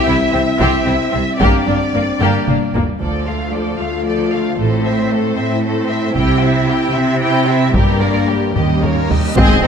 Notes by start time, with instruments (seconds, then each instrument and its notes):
Already playing: french horn section C4 E4, violin section E5
0.06 double bass section C2, cello section C3, viola section C4, violin section E4
0.32 double bass section C2, cello section C3, viola section C4, violin section C4
0.59 double bass section C2, cello section C3, viola section C4, violin section G4, taiko
0.85 double bass section C2, cello section C3, viola section C4, violin section E4
1.12 double bass section C2, cello section C3, viola section C4, violin section C4
1.40 double bass section G1, cello section G2, viola section A#3, french horn section D4, violin section G4 D5, taiko
1.67 double bass section G1, cello section G2, viola section A#3, violin section D4
1.94 double bass section G1, cello section G2, viola section A#3, violin section A#3
2.21 double bass section G1, cello section G2, viola section A#3, french horn section A#3, violin section G4, taiko low-mid
2.48 double bass section G1, cello section G2, viola section A#3, violin section D4, taiko mid
2.74 double bass section G1, cello section G2, violin section A#3, viola section A#3, taiko low
3.01 double bass section D2, cello section D2, viola section F3, french horn section A3 F4, violin section A4 D5, taiko
3.27 viola section A3, violin section F4 F5
3.52 viola section F3, violin section A4 D5
3.79 cello section D2, viola section A3, violin section F4 F5
4.06 viola section F3, violin section A4 D5
4.31 viola section A3, violin section F4 F5
4.58 double bass section A1, cello section A2, viola section A3, french horn section C4 E4, violin section A4 C5
4.84 viola section C4, violin section C5 E5
5.10 viola section A3, violin section A4 C5
5.37 cello section A2, viola section C4, violin section C5 E5
5.62 viola section A3, violin section A4 C5
5.88 viola section C4, violin section C5 E5
6.14 double bass section C2, cello section C3, viola section E4, violin section G4 G5, taiko
6.40 viola section C4, violin section E4 E5
6.67 viola section E4, violin section G4 G5
6.93 cello section C3, viola section C4, violin section E4 E5
7.21 viola section E4, violin section G4 G5
7.46 viola section C4, violin section E4 E5
7.74 double bass section G1, cello section G2, viola section G3, french horn section A#3 D4, violin section G4 A#4, taiko, reverse cymbal
8.01 viola section A#3, violin section A#4 D5
8.27 viola section G3, violin section G4 A#4
8.54 double bass section D#2, cello section D#2, viola section G3, french horn section G3 C#4, violin section G4 D#5, taiko low-mid
8.82 viola section A#3, violin section A#4 C#5, taiko low-mid
9.09 viola section G3, violin section G4 D#5, taiko low
9.36 double bass section G#1, cello section G#2, viola section C4, violin section G#4 D#5, taiko, tam-tam, impact
9.62 double bass section G#1, cello section G#2, viola section C4, violin section D#4 C5